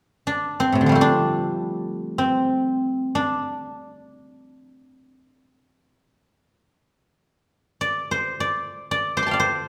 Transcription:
guzheng
0.27 D4
0.60 C4
0.72 A2 C3
0.81 D3
0.86 F3 G3
0.92 A3 C4
1.01 D4
2.18 C4
3.15 D4
7.81 D5
8.11 C5
8.40 D5
8.91 D5
9.17 C5 D6
9.23 A5 C6
9.28 F5 G5
9.33 D5
9.40 C5

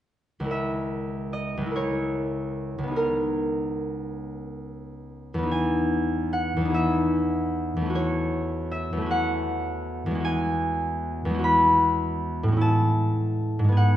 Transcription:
harp
0.40 C#2 G#3
0.44 E4 A#4
0.51 E5
1.33 D#5
1.57 C#2 G#3
1.66 E4
1.71 A#4
1.76 C#5
2.78 C#2
2.83 B3
2.88 D#4
2.92 G#4
2.96 A#4
5.34 E2
5.38 B3
5.43 D#4
5.47 G#4
5.51 G#5
6.33 F#5
6.57 E2
6.61 B3
6.65 D#4
6.70 G#4
6.74 E5
7.76 E2
7.81 A3
7.85 C#4
7.90 F#4
7.95 C#5
8.71 E5
8.93 E2
8.97 A3
9.01 C#4
9.06 F#4
9.11 F#5
10.06 E2
10.11 G#3 C#4
10.20 F#4
10.25 G#5
11.25 E2
11.30 G#3
11.34 C#4
11.39 F#4
11.44 B5
12.43 A2
12.48 G#3
12.52 C#4
12.57 E4
12.61 A5
13.59 G#2
13.64 G#3
13.69 B3 G#4
13.77 F#5

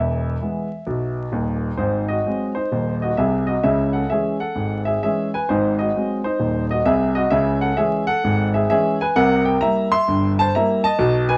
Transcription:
grand piano
Already playing: E1 E2 E5
0.42 E3 G#3 B3
0.87 B1 B2
1.32 D#1 D#2
1.77 G#1 G#2 D#4 C5
2.08 F#4 D#5
2.25 F#3 G#3 C4
2.55 D#4 C5
2.72 D#1 D#2
3.02 F#4 D#5
3.17 C2 C3 G#4 E5
3.47 F#4 D#5
3.63 C#2 C#3 G#4 E5
3.93 A4 F#5
4.10 E3 G#3 C#4 G#4 E5
4.40 A4 F#5
4.55 G#1 G#2
4.85 G#4 E5
5.03 E3 G#3 C#4 G#4 E5
5.34 B4 G#5
5.49 G#1 G#2 D#4 C5
5.79 F#4 D#5
5.95 F#3 G#3 C4
6.24 D#4 C5
6.39 D#1 D#2
6.71 F#4 D#5
6.85 C2 C3 G#4 E5
7.15 F#4 D#5
7.30 C#2 C#3 G#4 E5
7.61 A4 F#5
7.77 E3 G#3 C#4 G#4 E5
8.07 A4 F#5
8.24 G#1 G#2
8.54 G#4 E5
8.70 E3 G#3 C#4 G#4 E5
9.01 B4 G#5
9.16 C2 C3 A#4 F#5
9.45 A#4 G5
9.61 G3 A#3 E4 E5 A#5
9.92 E5 C6
10.08 G1 G2
10.39 C5 A5
10.55 G3 A#3 E4 E5 A#5
10.84 D#5 A5
10.99 B1 B2
11.29 B4 G#5

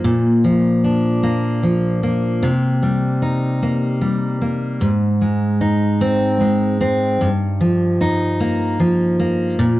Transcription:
steel-string acoustic guitar
Already playing: F3 A#3 D#4
0.04 A#2
0.44 F3
0.84 D4
1.23 A#3
1.63 F3
2.03 A#3
2.43 C3
2.83 G3
3.22 D#4
3.63 A#3
4.01 G3
4.42 A#3
4.81 G#2
5.22 G#3
5.61 D#4
6.01 C4
6.41 G#3
6.81 C4
7.21 G2
7.61 F3
8.01 D#4
8.40 A#3
8.80 F3
9.20 A#3
9.59 A#2

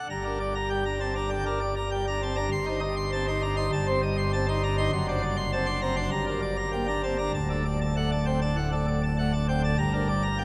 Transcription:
pipe organ
0.10 G1 G2 A#5
0.24 D4 A#4
0.40 D5
0.55 A#5
0.70 G3 G5
0.85 D4 A#5
1.00 C4 A5
1.15 D4 A#5
1.30 D3 G5
1.46 D4 A#4
1.60 D5
1.76 A#5
1.91 G3 G5
2.07 D4 A#5
2.22 C4 A5
2.36 D4 A#5
2.52 G1 G2 C6
2.66 D#4 C5
2.80 D#5
2.96 C6
3.12 C4 A5
3.27 D#4 C6
3.42 D4 A#5
3.56 D#4 C6
3.72 G1 G2 A5
3.87 C4 C5
4.02 D#5
4.18 C6
4.33 C4 A5
4.48 D#4 C6
4.63 D4 A#5
4.78 D#4 C6
4.92 F#1 F#2 C6
5.08 D4 C5
5.22 D5
5.37 C6
5.52 C4 A5
5.66 D4 C6
5.81 C4 A#5
5.96 D4 C6
6.11 G1 G2 A#5
6.27 D4 A#4
6.42 D5
6.57 A#5
6.72 A#3 G5
6.87 D4 A#5
7.03 C4 A5
7.18 D4 A#5
7.34 D1 D2 A5
7.49 D4 A4
7.65 D5
7.81 A5
7.96 A3 F#5
8.11 D4 A5
8.26 C4 G5
8.42 D4 A5
8.56 A2 F#5
8.72 D4 A4
8.88 D5
9.03 A5
9.18 A3 F#5
9.33 D4 A5
9.48 C4 G5
9.63 D4 A5
9.78 G1 G2 A#5
9.93 D4 A#4
10.08 D5
10.23 A#5
10.38 A#3 G5

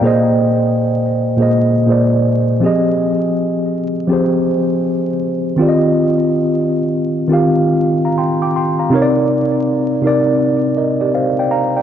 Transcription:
tine electric piano
Already playing: D5 G5
0.01 A#2 A#3 G#4
0.05 C5 D#5
1.37 A#2 A#3 G#4
1.41 C5 D#5
1.86 A#2 A#3 G#4
1.90 C5 D5
2.60 F3 C4 G4
2.65 G#4 D#5
4.07 F3 C4 G4
4.12 G#4 C5
5.56 D#3 C4 F4
5.61 G4 D5
5.69 D#5
7.28 D#3 C4 F4
7.32 G4 F5
8.05 F5 A#5
8.18 G5 C6
8.42 G5 D6
8.56 G5 C6
8.79 F5 A#5
8.90 C3 C4 D#4
8.94 A#4 C#5
9.02 D5
10.01 C3 C4 D#4
10.05 A#4 D5
10.77 A#4 D#5
11.01 G4 D5
11.15 C5 F5
11.39 D5 G5
11.51 F5 A#5
11.77 D5 G5

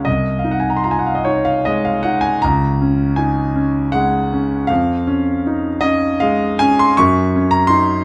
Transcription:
grand piano
0.05 C2 D#5
0.39 F5
0.44 D#4
0.51 F#5
0.60 G#5
0.70 A#5
0.77 C6
0.84 F4 A#5
0.91 G#5
0.99 F#5
1.06 F5
1.15 D#5
1.25 D#4 C#5
1.45 F5
1.65 G#3 D#5
1.85 F5
2.03 D#4 F#5
2.21 G#5
2.42 C#2 A#5
2.81 C#4
3.16 D#4 G#5
3.56 C#4
3.92 G#3 F#5
4.33 C#4
4.67 F2 F5
5.07 C#4
5.47 D#4
5.81 C#4 D#5
6.20 G#3 F5
6.59 C#4 G#5
6.79 C6
6.97 F#2 C#6
7.36 C#4
7.51 A#5
7.67 D#4 C6

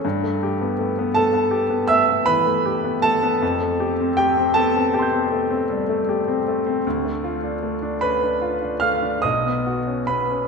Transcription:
grand piano
0.05 G2
0.24 A3
0.43 G4
0.61 B3
0.79 A3
0.99 B3
1.15 A3 A4 A5
1.33 B3
1.51 G4
1.70 B3
1.88 A3 E5 E6
2.08 B3
2.26 E3 B4 B5
2.46 A3
2.66 G4
2.84 B3
3.02 A3 A4 A5
3.23 B3
3.42 F2
3.61 A3
3.80 G4
4.00 C4
4.17 A3 G4 G5
4.37 C4
4.54 B3 A4 A5
4.76 C4
4.93 G4 G5 A5
4.99 C6 G6
5.13 C4
5.32 A3
5.51 C4
5.70 G3
5.89 A3
6.09 G4
6.28 C4
6.48 A3
6.66 C4
6.87 D2
7.05 A3
7.24 F4
7.43 D4
7.63 A3
7.82 D4
8.01 C#4 B4 B5
8.23 D4
8.41 F4
8.62 D4
8.80 A3 F5 F6
9.02 D4
9.22 B1 D#5 D#6
9.46 B3
9.66 F#4
9.87 C#4
10.07 B3 B4 B5
10.31 C#4

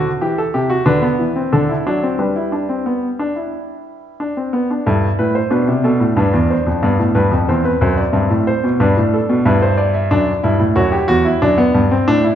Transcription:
grand piano
Already playing: C5
0.21 E3 G4
0.38 A4
0.54 C3 G4
0.70 F#4
0.86 D3 D4 B4
1.02 B3
1.19 E3
1.36 C4
1.52 D3 D4 A4
1.69 E4
1.87 F#3 D4
2.03 C4
2.19 G3 D4 B4
2.36 E4
2.52 D4
2.69 C4
2.86 B3
3.19 D4
3.36 E4
4.20 D4
4.37 C4
4.53 B3
4.71 D4
4.86 G2 E4 A4
5.19 A2 B4
5.35 C5
5.51 B2 D4 B4
5.68 C3
5.84 B2 A4
6.00 A2
6.16 G2 D4 B4
6.33 E2
6.50 C5
6.67 F2
6.83 G2 B3 D5
6.99 A2
7.15 G2 B4
7.32 F2
7.49 E2 C4 C5
7.65 B4
7.81 F#2 C5
7.97 D5
8.12 G2 C4 E5
8.30 A2
8.47 C5
8.64 B2
8.80 G2 D4 B4
8.97 A2
9.14 A4
9.29 B2
9.45 G2 E4 B4
9.62 C5
9.77 D5
9.94 E5
10.11 F#2 D4 D5
10.43 G2 E4
10.60 A2
10.76 F#2 F#4 C#5
10.92 G4
11.08 E2 F#4
11.25 E4
11.42 F#2 D4 D5
11.58 B3
11.74 G2
11.91 C4
12.08 A2 D4
12.24 E4

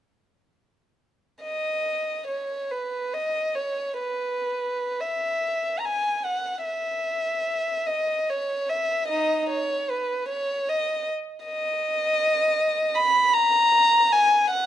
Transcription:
violin
1.43 D#5
2.28 C#5
2.71 B4
3.14 D#5
3.55 C#5
3.99 B4
5.00 E5
5.79 A#5
5.85 G#5
6.25 F#5
6.65 E5
7.87 D#5
8.30 C#5
8.69 E5
9.08 D#4 D#5
9.49 C#5
9.90 B4
10.29 C#5
10.68 D#5
11.45 D#5
12.95 B5
13.34 A#5
14.12 G#5
14.50 F#5

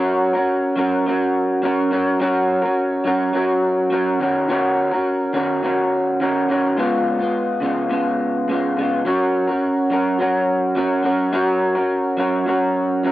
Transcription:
clean electric guitar
Already playing: F#3 C#4 F#4 A#4
0.33 C#4 F#4 A#4
0.76 F#3 C#4 F#4 A#4
1.06 F#3 C#4 F#4 A#4
1.62 F#3 C#4 F#4 A#4
1.91 F#3 C#4 F#4 A#4
2.20 F#3 C#4 F#4 A#4
2.62 C#4 F#4 A#4
3.04 F#3 C#4 F#4 A#4
3.33 F#3 C#4 F#4 A#4
3.90 F#3 C#4 F#4 A#4
4.20 D#3 C#4 F#4 A#4
4.48 D#3 C#4 F#4 A#4
4.92 C#4 F#4 A#4
5.33 D#3 C#4 F#4 A#4
5.63 D#3 C#4 F#4 A#4
6.20 D#3 C#4 F#4 A#4
6.49 D#3 C#4 F#4 A#4
6.77 C#3 G#3 B3 F4
7.19 G#3 B3 F4
7.60 C#3 G#3 B3 F4
7.90 C#3 G#3 B3 F4
8.48 C#3 G#3 B3 F4
8.77 C#3 G#3 B3 F4
9.05 F#3 C#4 F#4 A#4
9.47 C#4 F#4 A#4
9.90 F#3 C#4 F#4 A#4
10.19 F#3 C#4 F#4 A#4
10.75 F#3 C#4 F#4 A#4
11.03 F#3 C#4 F#4 A#4
11.32 F#3 C#4 F#4 A#4
11.75 C#4 F#4 A#4
12.17 F#3 C#4 F#4 A#4
12.46 F#3 C#4 F#4 A#4
13.03 F#3 C#4 F#4 A#4

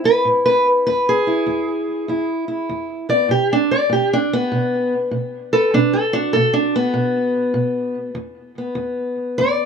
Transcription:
steel-string acoustic guitar
Already playing: A2 C4
0.04 E4 B4
0.25 A2
0.46 B4
0.87 E2 B4
1.09 G#4
1.27 E4
1.46 E2
2.08 E2 E4
2.48 E4
2.69 E2
3.09 B3 D5
3.29 B2 G4
3.53 D4
3.71 D5
3.90 B2 G4
4.13 D4
4.33 B3
4.52 B2
5.11 B2
5.53 A4 B4
5.74 B2 D4
5.93 A4
6.13 D4 F#4
6.33 B2 A4
6.53 D4
6.76 B3
6.94 B2
7.54 B2
8.15 E2
8.58 B3
8.75 E2
9.38 E2 D5

